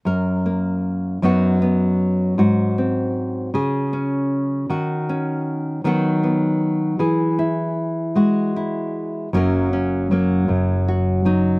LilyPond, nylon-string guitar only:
\new Staff \with { instrumentName = "Nylon-string guitar" } { \time 6/8 \key fis \mixolydian \tempo 4. = 52 << { ais'8 ais4 <fis b dis' fis'>8 b4 | fis'8 bis4 gis'8 cis'4 | fis'8 cis'4 <fis b dis' fis'>8 b4 | gis'8 e'4 fis'8 e'4 |
<fis ais cis' ais'>8 cis'8 ais8 r8 fis'8 dis'8 | } \\ { fis,4. fis,4. | gis,4. cis4. | dis4. dis4. | e4. gis4. |
fis,4 fis8 fis,4 fis8 | } >> }